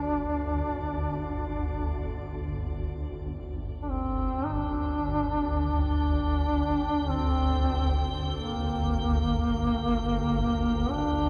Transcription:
Already playing: G1 D2 G2 D4 C5 D5
3.25 G1 D2 G5
3.82 D4
3.90 C4
4.45 D#4
4.54 D4
5.83 D4
7.09 C4
8.37 A#3
10.91 D4

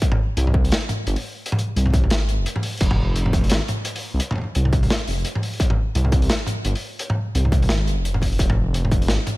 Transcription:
0.02 kick, closed hi-hat
0.12 mid tom
0.37 C2, closed hi-hat
0.47 mid tom
0.54 kick
0.65 open hi-hat
0.72 snare, closed hi-hat
0.89 closed hi-hat, mid tom
1.06 G1, closed hi-hat
1.16 open hi-hat
1.46 closed hi-hat
1.52 mid tom
1.59 closed hi-hat
1.76 C2, closed hi-hat
1.86 mid tom
1.90 mid tom
1.93 kick, closed hi-hat, mid tom
1.96 mid tom
1.98 mid tom
2.04 mid tom
2.10 G#1, snare, closed hi-hat
2.29 closed hi-hat
2.39 F1
2.46 closed hi-hat
2.56 mid tom
2.63 open hi-hat
2.77 F1, kick, closed hi-hat, open hi-hat, crash
2.91 mid tom
3.16 closed hi-hat
3.26 mid tom
3.33 kick, closed hi-hat
3.44 open hi-hat
3.50 G#1, snare, closed hi-hat
3.68 closed hi-hat, mid tom
3.85 closed hi-hat
3.96 open hi-hat
4.14 C2
4.20 closed hi-hat
4.31 mid tom
4.32 mid tom
4.36 mid tom
4.38 mid tom
4.42 mid tom
4.44 mid tom
4.55 C2, closed hi-hat
4.65 mid tom
4.73 kick, closed hi-hat
4.83 mid tom, open hi-hat
4.90 snare, closed hi-hat
5.07 F1, closed hi-hat
5.11 closed hi-hat
5.13 closed hi-hat
5.18 closed hi-hat
5.23 closed hi-hat
5.25 closed hi-hat
5.35 mid tom
5.43 open hi-hat
5.53 open hi-hat
5.60 kick, closed hi-hat
5.70 mid tom
5.95 C2, closed hi-hat
6.05 mid tom
6.12 kick, closed hi-hat
6.22 open hi-hat
6.30 snare, closed hi-hat
6.47 closed hi-hat, mid tom
6.65 G1, closed hi-hat
6.75 open hi-hat
6.99 closed hi-hat
7.10 mid tom
7.35 C2, closed hi-hat
7.45 mid tom
7.52 kick, closed hi-hat
7.62 mid tom, open hi-hat
7.69 G#1, snare, closed hi-hat
7.87 G1, closed hi-hat
7.97 F1
8.05 closed hi-hat
8.14 mid tom
8.22 kick, open hi-hat
8.32 open hi-hat
8.39 F1, kick, closed hi-hat
8.50 mid tom
8.74 closed hi-hat
8.85 mid tom
8.91 kick, closed hi-hat
9.02 open hi-hat
9.08 G#1, snare, closed hi-hat
9.27 closed hi-hat, mid tom

